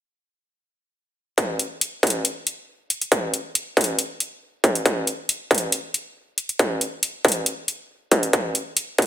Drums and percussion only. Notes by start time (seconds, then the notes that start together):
1.38 kick, closed hi-hat
1.59 closed hi-hat
1.81 closed hi-hat
2.03 kick, closed hi-hat
2.07 closed hi-hat
2.10 closed hi-hat
2.25 closed hi-hat
2.47 closed hi-hat
2.90 closed hi-hat
3.01 closed hi-hat
3.12 kick, closed hi-hat
3.34 closed hi-hat
3.55 closed hi-hat
3.77 kick, closed hi-hat
3.81 closed hi-hat
3.84 closed hi-hat
3.99 closed hi-hat
4.20 closed hi-hat
4.64 kick, closed hi-hat
4.75 closed hi-hat
4.86 kick, closed hi-hat
5.07 closed hi-hat
5.29 closed hi-hat
5.51 kick, closed hi-hat
5.55 closed hi-hat
5.58 closed hi-hat
5.72 closed hi-hat
5.94 closed hi-hat
6.38 closed hi-hat
6.49 closed hi-hat
6.59 kick, closed hi-hat
6.81 closed hi-hat
7.03 closed hi-hat
7.25 kick, closed hi-hat
7.28 closed hi-hat
7.32 closed hi-hat
7.46 closed hi-hat
7.68 closed hi-hat
8.11 kick, closed hi-hat
8.23 closed hi-hat
8.33 kick, closed hi-hat
8.55 closed hi-hat
8.77 closed hi-hat
8.98 kick, closed hi-hat
9.02 closed hi-hat